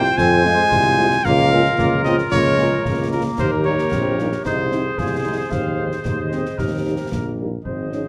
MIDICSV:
0, 0, Header, 1, 8, 480
1, 0, Start_track
1, 0, Key_signature, -4, "major"
1, 0, Tempo, 534283
1, 160, Time_signature, 2, 2, 24, 8
1, 7263, End_track
2, 0, Start_track
2, 0, Title_t, "Cornet"
2, 0, Program_c, 0, 56
2, 0, Note_on_c, 0, 79, 126
2, 156, Note_on_c, 0, 80, 127
2, 169, Note_off_c, 0, 79, 0
2, 1121, Note_on_c, 0, 77, 127
2, 1134, Note_off_c, 0, 80, 0
2, 1831, Note_off_c, 0, 77, 0
2, 1836, Note_on_c, 0, 75, 106
2, 1945, Note_off_c, 0, 75, 0
2, 2076, Note_on_c, 0, 73, 118
2, 2762, Note_off_c, 0, 73, 0
2, 2797, Note_on_c, 0, 70, 89
2, 2906, Note_off_c, 0, 70, 0
2, 3047, Note_on_c, 0, 72, 97
2, 3154, Note_off_c, 0, 72, 0
2, 3279, Note_on_c, 0, 73, 100
2, 3963, Note_off_c, 0, 73, 0
2, 4001, Note_on_c, 0, 72, 93
2, 4481, Note_on_c, 0, 68, 83
2, 4495, Note_off_c, 0, 72, 0
2, 4954, Note_on_c, 0, 77, 80
2, 4968, Note_off_c, 0, 68, 0
2, 5269, Note_off_c, 0, 77, 0
2, 5435, Note_on_c, 0, 75, 67
2, 6361, Note_off_c, 0, 75, 0
2, 6870, Note_on_c, 0, 75, 56
2, 7263, Note_off_c, 0, 75, 0
2, 7263, End_track
3, 0, Start_track
3, 0, Title_t, "Woodwind section"
3, 0, Program_c, 1, 71
3, 0, Note_on_c, 1, 65, 87
3, 0, Note_on_c, 1, 72, 84
3, 1085, Note_off_c, 1, 72, 0
3, 1087, Note_off_c, 1, 65, 0
3, 1126, Note_on_c, 1, 70, 92
3, 1127, Note_on_c, 1, 65, 91
3, 2894, Note_off_c, 1, 65, 0
3, 2894, Note_off_c, 1, 70, 0
3, 3047, Note_on_c, 1, 70, 78
3, 3048, Note_on_c, 1, 67, 78
3, 3967, Note_off_c, 1, 70, 0
3, 4004, Note_off_c, 1, 67, 0
3, 4007, Note_on_c, 1, 72, 74
3, 4008, Note_on_c, 1, 68, 73
3, 5887, Note_off_c, 1, 68, 0
3, 5913, Note_on_c, 1, 67, 51
3, 5917, Note_on_c, 1, 70, 53
3, 5923, Note_off_c, 1, 72, 0
3, 6600, Note_off_c, 1, 67, 0
3, 6638, Note_off_c, 1, 70, 0
3, 6880, Note_on_c, 1, 68, 42
3, 6880, Note_on_c, 1, 72, 44
3, 7263, Note_off_c, 1, 68, 0
3, 7263, Note_off_c, 1, 72, 0
3, 7263, End_track
4, 0, Start_track
4, 0, Title_t, "Euphonium"
4, 0, Program_c, 2, 58
4, 6874, Note_on_c, 2, 60, 39
4, 7100, Note_off_c, 2, 60, 0
4, 7118, Note_on_c, 2, 61, 40
4, 7226, Note_off_c, 2, 61, 0
4, 7263, End_track
5, 0, Start_track
5, 0, Title_t, "French horn section"
5, 0, Program_c, 3, 60
5, 401, Note_on_c, 3, 65, 66
5, 402, Note_on_c, 3, 56, 69
5, 404, Note_on_c, 3, 60, 66
5, 487, Note_off_c, 3, 65, 0
5, 488, Note_off_c, 3, 56, 0
5, 490, Note_off_c, 3, 60, 0
5, 883, Note_on_c, 3, 65, 71
5, 884, Note_on_c, 3, 60, 68
5, 885, Note_on_c, 3, 56, 74
5, 968, Note_off_c, 3, 65, 0
5, 969, Note_off_c, 3, 60, 0
5, 970, Note_off_c, 3, 56, 0
5, 1367, Note_on_c, 3, 58, 71
5, 1368, Note_on_c, 3, 65, 66
5, 1369, Note_off_c, 3, 58, 0
5, 1369, Note_on_c, 3, 58, 68
5, 1453, Note_off_c, 3, 65, 0
5, 1454, Note_off_c, 3, 58, 0
5, 1846, Note_on_c, 3, 58, 62
5, 1846, Note_on_c, 3, 65, 67
5, 1847, Note_off_c, 3, 58, 0
5, 1847, Note_on_c, 3, 58, 66
5, 1931, Note_off_c, 3, 65, 0
5, 1932, Note_off_c, 3, 58, 0
5, 2326, Note_on_c, 3, 58, 62
5, 2327, Note_off_c, 3, 58, 0
5, 2327, Note_on_c, 3, 58, 71
5, 2327, Note_on_c, 3, 65, 70
5, 2412, Note_off_c, 3, 58, 0
5, 2412, Note_off_c, 3, 65, 0
5, 2807, Note_on_c, 3, 58, 66
5, 2808, Note_off_c, 3, 58, 0
5, 2808, Note_on_c, 3, 58, 61
5, 2808, Note_on_c, 3, 65, 61
5, 2893, Note_off_c, 3, 58, 0
5, 2893, Note_off_c, 3, 65, 0
5, 3285, Note_on_c, 3, 63, 61
5, 3287, Note_on_c, 3, 58, 60
5, 3288, Note_on_c, 3, 55, 59
5, 3370, Note_off_c, 3, 63, 0
5, 3372, Note_off_c, 3, 55, 0
5, 3372, Note_off_c, 3, 58, 0
5, 3765, Note_on_c, 3, 55, 58
5, 3765, Note_on_c, 3, 63, 55
5, 3768, Note_on_c, 3, 58, 59
5, 3850, Note_off_c, 3, 55, 0
5, 3850, Note_off_c, 3, 63, 0
5, 3852, Note_off_c, 3, 58, 0
5, 4237, Note_on_c, 3, 56, 53
5, 4237, Note_on_c, 3, 63, 53
5, 4242, Note_on_c, 3, 60, 54
5, 4324, Note_off_c, 3, 56, 0
5, 4324, Note_off_c, 3, 63, 0
5, 4328, Note_off_c, 3, 60, 0
5, 4719, Note_on_c, 3, 56, 49
5, 4721, Note_on_c, 3, 63, 51
5, 4722, Note_on_c, 3, 60, 50
5, 4806, Note_off_c, 3, 56, 0
5, 4807, Note_off_c, 3, 63, 0
5, 4808, Note_off_c, 3, 60, 0
5, 5199, Note_on_c, 3, 56, 45
5, 5199, Note_on_c, 3, 60, 48
5, 5200, Note_on_c, 3, 63, 48
5, 5285, Note_off_c, 3, 56, 0
5, 5285, Note_off_c, 3, 60, 0
5, 5287, Note_off_c, 3, 63, 0
5, 5676, Note_on_c, 3, 63, 49
5, 5677, Note_on_c, 3, 60, 47
5, 5679, Note_on_c, 3, 56, 49
5, 5763, Note_off_c, 3, 63, 0
5, 5764, Note_off_c, 3, 60, 0
5, 5766, Note_off_c, 3, 56, 0
5, 6163, Note_on_c, 3, 58, 45
5, 6165, Note_on_c, 3, 55, 45
5, 6166, Note_on_c, 3, 63, 45
5, 6248, Note_off_c, 3, 58, 0
5, 6250, Note_off_c, 3, 55, 0
5, 6251, Note_off_c, 3, 63, 0
5, 6643, Note_on_c, 3, 55, 43
5, 6644, Note_on_c, 3, 63, 43
5, 6645, Note_on_c, 3, 58, 43
5, 6728, Note_off_c, 3, 55, 0
5, 6729, Note_off_c, 3, 63, 0
5, 6730, Note_off_c, 3, 58, 0
5, 7119, Note_on_c, 3, 63, 32
5, 7121, Note_on_c, 3, 60, 32
5, 7122, Note_on_c, 3, 56, 35
5, 7205, Note_off_c, 3, 63, 0
5, 7207, Note_off_c, 3, 60, 0
5, 7208, Note_off_c, 3, 56, 0
5, 7263, End_track
6, 0, Start_track
6, 0, Title_t, "Trombone section"
6, 0, Program_c, 4, 61
6, 160, Note_on_c, 4, 60, 88
6, 383, Note_off_c, 4, 60, 0
6, 401, Note_on_c, 4, 56, 89
6, 1085, Note_off_c, 4, 56, 0
6, 1134, Note_on_c, 4, 58, 85
6, 1351, Note_off_c, 4, 58, 0
6, 1356, Note_on_c, 4, 56, 73
6, 1582, Note_off_c, 4, 56, 0
6, 1593, Note_on_c, 4, 58, 90
6, 1820, Note_off_c, 4, 58, 0
6, 1837, Note_on_c, 4, 60, 85
6, 1946, Note_off_c, 4, 60, 0
6, 2077, Note_on_c, 4, 58, 85
6, 2302, Note_off_c, 4, 58, 0
6, 2316, Note_on_c, 4, 56, 75
6, 2541, Note_off_c, 4, 56, 0
6, 2561, Note_on_c, 4, 58, 96
6, 3520, Note_off_c, 4, 58, 0
6, 3525, Note_on_c, 4, 60, 76
6, 3753, Note_on_c, 4, 58, 66
6, 3762, Note_off_c, 4, 60, 0
6, 3863, Note_off_c, 4, 58, 0
6, 3984, Note_on_c, 4, 63, 72
6, 4214, Note_off_c, 4, 63, 0
6, 4226, Note_on_c, 4, 60, 63
6, 4468, Note_on_c, 4, 65, 72
6, 4473, Note_off_c, 4, 60, 0
6, 4579, Note_off_c, 4, 65, 0
6, 4708, Note_on_c, 4, 63, 55
6, 4818, Note_off_c, 4, 63, 0
6, 4949, Note_on_c, 4, 60, 60
6, 5355, Note_off_c, 4, 60, 0
6, 5426, Note_on_c, 4, 58, 62
6, 5537, Note_off_c, 4, 58, 0
6, 5661, Note_on_c, 4, 60, 55
6, 6354, Note_off_c, 4, 60, 0
6, 6388, Note_on_c, 4, 58, 54
6, 6840, Note_off_c, 4, 58, 0
6, 7263, End_track
7, 0, Start_track
7, 0, Title_t, "Tuba"
7, 0, Program_c, 5, 58
7, 162, Note_on_c, 5, 41, 102
7, 561, Note_off_c, 5, 41, 0
7, 648, Note_on_c, 5, 36, 92
7, 1044, Note_off_c, 5, 36, 0
7, 1122, Note_on_c, 5, 37, 106
7, 1521, Note_off_c, 5, 37, 0
7, 1602, Note_on_c, 5, 37, 91
7, 2001, Note_off_c, 5, 37, 0
7, 2077, Note_on_c, 5, 37, 94
7, 2478, Note_off_c, 5, 37, 0
7, 2558, Note_on_c, 5, 37, 82
7, 2959, Note_off_c, 5, 37, 0
7, 3037, Note_on_c, 5, 39, 86
7, 3438, Note_off_c, 5, 39, 0
7, 3517, Note_on_c, 5, 34, 76
7, 3918, Note_off_c, 5, 34, 0
7, 3999, Note_on_c, 5, 36, 79
7, 4399, Note_off_c, 5, 36, 0
7, 4483, Note_on_c, 5, 36, 73
7, 4881, Note_off_c, 5, 36, 0
7, 4952, Note_on_c, 5, 39, 69
7, 5356, Note_off_c, 5, 39, 0
7, 5437, Note_on_c, 5, 39, 57
7, 5794, Note_off_c, 5, 39, 0
7, 5914, Note_on_c, 5, 39, 65
7, 6316, Note_off_c, 5, 39, 0
7, 6398, Note_on_c, 5, 34, 60
7, 6798, Note_off_c, 5, 34, 0
7, 6881, Note_on_c, 5, 32, 50
7, 7263, Note_off_c, 5, 32, 0
7, 7263, End_track
8, 0, Start_track
8, 0, Title_t, "Drums"
8, 42, Note_on_c, 9, 38, 52
8, 131, Note_off_c, 9, 38, 0
8, 163, Note_on_c, 9, 35, 77
8, 163, Note_on_c, 9, 38, 72
8, 253, Note_off_c, 9, 35, 0
8, 253, Note_off_c, 9, 38, 0
8, 404, Note_on_c, 9, 38, 58
8, 494, Note_off_c, 9, 38, 0
8, 642, Note_on_c, 9, 35, 78
8, 642, Note_on_c, 9, 38, 67
8, 732, Note_off_c, 9, 35, 0
8, 732, Note_off_c, 9, 38, 0
8, 1125, Note_on_c, 9, 35, 81
8, 1125, Note_on_c, 9, 38, 77
8, 1214, Note_off_c, 9, 35, 0
8, 1214, Note_off_c, 9, 38, 0
8, 1484, Note_on_c, 9, 38, 51
8, 1574, Note_off_c, 9, 38, 0
8, 1604, Note_on_c, 9, 35, 82
8, 1604, Note_on_c, 9, 38, 75
8, 1694, Note_off_c, 9, 35, 0
8, 1694, Note_off_c, 9, 38, 0
8, 1842, Note_on_c, 9, 38, 56
8, 1932, Note_off_c, 9, 38, 0
8, 1962, Note_on_c, 9, 38, 53
8, 2052, Note_off_c, 9, 38, 0
8, 2083, Note_on_c, 9, 35, 86
8, 2083, Note_on_c, 9, 38, 75
8, 2173, Note_off_c, 9, 35, 0
8, 2173, Note_off_c, 9, 38, 0
8, 2321, Note_on_c, 9, 38, 58
8, 2411, Note_off_c, 9, 38, 0
8, 2563, Note_on_c, 9, 35, 78
8, 2563, Note_on_c, 9, 38, 63
8, 2653, Note_off_c, 9, 35, 0
8, 2653, Note_off_c, 9, 38, 0
8, 3038, Note_on_c, 9, 35, 86
8, 3038, Note_on_c, 9, 38, 69
8, 3038, Note_on_c, 9, 49, 30
8, 3128, Note_off_c, 9, 35, 0
8, 3128, Note_off_c, 9, 38, 0
8, 3128, Note_off_c, 9, 49, 0
8, 3400, Note_on_c, 9, 38, 54
8, 3490, Note_off_c, 9, 38, 0
8, 3518, Note_on_c, 9, 35, 75
8, 3518, Note_on_c, 9, 38, 76
8, 3608, Note_off_c, 9, 35, 0
8, 3608, Note_off_c, 9, 38, 0
8, 3761, Note_on_c, 9, 38, 52
8, 3851, Note_off_c, 9, 38, 0
8, 3880, Note_on_c, 9, 38, 53
8, 3970, Note_off_c, 9, 38, 0
8, 3998, Note_on_c, 9, 35, 72
8, 3998, Note_on_c, 9, 38, 72
8, 4088, Note_off_c, 9, 35, 0
8, 4088, Note_off_c, 9, 38, 0
8, 4238, Note_on_c, 9, 38, 51
8, 4328, Note_off_c, 9, 38, 0
8, 4474, Note_on_c, 9, 35, 73
8, 4474, Note_on_c, 9, 38, 61
8, 4564, Note_off_c, 9, 35, 0
8, 4564, Note_off_c, 9, 38, 0
8, 4954, Note_on_c, 9, 35, 75
8, 4954, Note_on_c, 9, 38, 66
8, 5044, Note_off_c, 9, 35, 0
8, 5044, Note_off_c, 9, 38, 0
8, 5316, Note_on_c, 9, 38, 46
8, 5406, Note_off_c, 9, 38, 0
8, 5435, Note_on_c, 9, 35, 75
8, 5435, Note_on_c, 9, 38, 69
8, 5524, Note_off_c, 9, 35, 0
8, 5524, Note_off_c, 9, 38, 0
8, 5675, Note_on_c, 9, 38, 47
8, 5765, Note_off_c, 9, 38, 0
8, 5800, Note_on_c, 9, 38, 49
8, 5889, Note_off_c, 9, 38, 0
8, 5916, Note_on_c, 9, 35, 76
8, 5916, Note_on_c, 9, 38, 60
8, 6006, Note_off_c, 9, 35, 0
8, 6006, Note_off_c, 9, 38, 0
8, 6398, Note_on_c, 9, 35, 71
8, 6398, Note_on_c, 9, 38, 72
8, 6488, Note_off_c, 9, 35, 0
8, 6488, Note_off_c, 9, 38, 0
8, 6874, Note_on_c, 9, 35, 53
8, 6964, Note_off_c, 9, 35, 0
8, 7117, Note_on_c, 9, 38, 29
8, 7207, Note_off_c, 9, 38, 0
8, 7263, End_track
0, 0, End_of_file